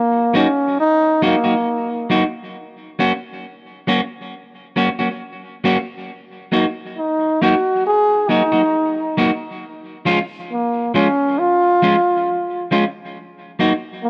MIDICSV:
0, 0, Header, 1, 3, 480
1, 0, Start_track
1, 0, Key_signature, -6, "minor"
1, 0, Tempo, 883392
1, 1383, Time_signature, 4, 2, 24, 8
1, 7661, End_track
2, 0, Start_track
2, 0, Title_t, "Trombone"
2, 0, Program_c, 0, 57
2, 0, Note_on_c, 0, 58, 88
2, 198, Note_on_c, 0, 61, 95
2, 206, Note_off_c, 0, 58, 0
2, 430, Note_off_c, 0, 61, 0
2, 434, Note_on_c, 0, 63, 106
2, 652, Note_off_c, 0, 63, 0
2, 674, Note_on_c, 0, 58, 76
2, 1127, Note_off_c, 0, 58, 0
2, 3791, Note_on_c, 0, 63, 84
2, 4033, Note_on_c, 0, 66, 100
2, 4041, Note_off_c, 0, 63, 0
2, 4268, Note_off_c, 0, 66, 0
2, 4274, Note_on_c, 0, 68, 106
2, 4506, Note_on_c, 0, 63, 85
2, 4515, Note_off_c, 0, 68, 0
2, 4985, Note_off_c, 0, 63, 0
2, 5720, Note_on_c, 0, 58, 80
2, 5935, Note_off_c, 0, 58, 0
2, 5952, Note_on_c, 0, 61, 91
2, 6188, Note_on_c, 0, 65, 104
2, 6196, Note_off_c, 0, 61, 0
2, 6906, Note_off_c, 0, 65, 0
2, 7628, Note_on_c, 0, 58, 86
2, 7661, Note_off_c, 0, 58, 0
2, 7661, End_track
3, 0, Start_track
3, 0, Title_t, "Clean electric guitar"
3, 0, Program_c, 1, 27
3, 183, Note_on_c, 1, 54, 74
3, 185, Note_on_c, 1, 58, 81
3, 189, Note_on_c, 1, 63, 88
3, 193, Note_on_c, 1, 66, 85
3, 250, Note_off_c, 1, 54, 0
3, 251, Note_off_c, 1, 58, 0
3, 253, Note_off_c, 1, 63, 0
3, 255, Note_off_c, 1, 66, 0
3, 664, Note_on_c, 1, 54, 78
3, 664, Note_on_c, 1, 58, 90
3, 668, Note_on_c, 1, 63, 94
3, 670, Note_on_c, 1, 66, 92
3, 730, Note_off_c, 1, 54, 0
3, 731, Note_off_c, 1, 58, 0
3, 732, Note_off_c, 1, 63, 0
3, 733, Note_off_c, 1, 66, 0
3, 782, Note_on_c, 1, 66, 58
3, 785, Note_on_c, 1, 63, 53
3, 788, Note_on_c, 1, 58, 53
3, 789, Note_on_c, 1, 54, 47
3, 834, Note_off_c, 1, 66, 0
3, 835, Note_off_c, 1, 63, 0
3, 837, Note_off_c, 1, 54, 0
3, 837, Note_off_c, 1, 58, 0
3, 1140, Note_on_c, 1, 54, 90
3, 1143, Note_on_c, 1, 58, 91
3, 1145, Note_on_c, 1, 63, 88
3, 1149, Note_on_c, 1, 66, 92
3, 1208, Note_off_c, 1, 54, 0
3, 1210, Note_off_c, 1, 58, 0
3, 1211, Note_off_c, 1, 63, 0
3, 1213, Note_off_c, 1, 66, 0
3, 1624, Note_on_c, 1, 54, 77
3, 1627, Note_on_c, 1, 58, 78
3, 1629, Note_on_c, 1, 61, 84
3, 1631, Note_on_c, 1, 66, 95
3, 1691, Note_off_c, 1, 54, 0
3, 1692, Note_off_c, 1, 58, 0
3, 1693, Note_off_c, 1, 61, 0
3, 1694, Note_off_c, 1, 66, 0
3, 2104, Note_on_c, 1, 54, 77
3, 2109, Note_on_c, 1, 58, 88
3, 2111, Note_on_c, 1, 61, 83
3, 2112, Note_on_c, 1, 66, 84
3, 2171, Note_off_c, 1, 54, 0
3, 2173, Note_off_c, 1, 58, 0
3, 2174, Note_off_c, 1, 61, 0
3, 2175, Note_off_c, 1, 66, 0
3, 2587, Note_on_c, 1, 54, 73
3, 2589, Note_on_c, 1, 58, 82
3, 2591, Note_on_c, 1, 61, 85
3, 2595, Note_on_c, 1, 66, 81
3, 2652, Note_off_c, 1, 54, 0
3, 2653, Note_off_c, 1, 58, 0
3, 2654, Note_off_c, 1, 61, 0
3, 2656, Note_off_c, 1, 66, 0
3, 2711, Note_on_c, 1, 66, 57
3, 2715, Note_on_c, 1, 61, 48
3, 2718, Note_on_c, 1, 58, 50
3, 2720, Note_on_c, 1, 54, 46
3, 2758, Note_off_c, 1, 66, 0
3, 2761, Note_off_c, 1, 61, 0
3, 2762, Note_off_c, 1, 58, 0
3, 2763, Note_off_c, 1, 54, 0
3, 3064, Note_on_c, 1, 54, 94
3, 3069, Note_on_c, 1, 58, 99
3, 3072, Note_on_c, 1, 61, 83
3, 3072, Note_on_c, 1, 66, 103
3, 3131, Note_off_c, 1, 54, 0
3, 3133, Note_off_c, 1, 58, 0
3, 3134, Note_off_c, 1, 61, 0
3, 3134, Note_off_c, 1, 66, 0
3, 3541, Note_on_c, 1, 54, 73
3, 3544, Note_on_c, 1, 58, 87
3, 3548, Note_on_c, 1, 63, 81
3, 3550, Note_on_c, 1, 66, 84
3, 3609, Note_off_c, 1, 54, 0
3, 3611, Note_off_c, 1, 58, 0
3, 3612, Note_off_c, 1, 63, 0
3, 3614, Note_off_c, 1, 66, 0
3, 4030, Note_on_c, 1, 54, 85
3, 4033, Note_on_c, 1, 58, 84
3, 4036, Note_on_c, 1, 63, 84
3, 4040, Note_on_c, 1, 66, 85
3, 4093, Note_off_c, 1, 54, 0
3, 4095, Note_off_c, 1, 58, 0
3, 4096, Note_off_c, 1, 63, 0
3, 4099, Note_off_c, 1, 66, 0
3, 4504, Note_on_c, 1, 54, 76
3, 4507, Note_on_c, 1, 58, 76
3, 4512, Note_on_c, 1, 63, 80
3, 4515, Note_on_c, 1, 66, 76
3, 4571, Note_off_c, 1, 54, 0
3, 4572, Note_off_c, 1, 58, 0
3, 4575, Note_off_c, 1, 63, 0
3, 4576, Note_off_c, 1, 66, 0
3, 4629, Note_on_c, 1, 63, 54
3, 4629, Note_on_c, 1, 66, 56
3, 4634, Note_on_c, 1, 58, 43
3, 4637, Note_on_c, 1, 54, 47
3, 4677, Note_off_c, 1, 63, 0
3, 4678, Note_off_c, 1, 66, 0
3, 4680, Note_off_c, 1, 58, 0
3, 4682, Note_off_c, 1, 54, 0
3, 4984, Note_on_c, 1, 54, 81
3, 4988, Note_on_c, 1, 58, 99
3, 4989, Note_on_c, 1, 63, 91
3, 4992, Note_on_c, 1, 66, 95
3, 5051, Note_off_c, 1, 54, 0
3, 5053, Note_off_c, 1, 58, 0
3, 5053, Note_off_c, 1, 63, 0
3, 5055, Note_off_c, 1, 66, 0
3, 5463, Note_on_c, 1, 53, 82
3, 5467, Note_on_c, 1, 56, 90
3, 5467, Note_on_c, 1, 61, 92
3, 5471, Note_on_c, 1, 65, 101
3, 5530, Note_off_c, 1, 53, 0
3, 5532, Note_off_c, 1, 56, 0
3, 5532, Note_off_c, 1, 61, 0
3, 5534, Note_off_c, 1, 65, 0
3, 5945, Note_on_c, 1, 53, 82
3, 5950, Note_on_c, 1, 56, 88
3, 5951, Note_on_c, 1, 61, 93
3, 5953, Note_on_c, 1, 65, 85
3, 6012, Note_off_c, 1, 53, 0
3, 6014, Note_off_c, 1, 56, 0
3, 6014, Note_off_c, 1, 61, 0
3, 6015, Note_off_c, 1, 65, 0
3, 6424, Note_on_c, 1, 53, 85
3, 6427, Note_on_c, 1, 56, 83
3, 6431, Note_on_c, 1, 61, 84
3, 6432, Note_on_c, 1, 65, 89
3, 6491, Note_off_c, 1, 53, 0
3, 6492, Note_off_c, 1, 56, 0
3, 6494, Note_off_c, 1, 61, 0
3, 6495, Note_off_c, 1, 65, 0
3, 6906, Note_on_c, 1, 53, 82
3, 6911, Note_on_c, 1, 56, 89
3, 6913, Note_on_c, 1, 61, 94
3, 6914, Note_on_c, 1, 65, 101
3, 6972, Note_off_c, 1, 53, 0
3, 6974, Note_off_c, 1, 56, 0
3, 6975, Note_off_c, 1, 61, 0
3, 6976, Note_off_c, 1, 65, 0
3, 7385, Note_on_c, 1, 54, 76
3, 7388, Note_on_c, 1, 58, 86
3, 7392, Note_on_c, 1, 63, 81
3, 7394, Note_on_c, 1, 66, 80
3, 7452, Note_off_c, 1, 54, 0
3, 7453, Note_off_c, 1, 58, 0
3, 7455, Note_off_c, 1, 63, 0
3, 7456, Note_off_c, 1, 66, 0
3, 7661, End_track
0, 0, End_of_file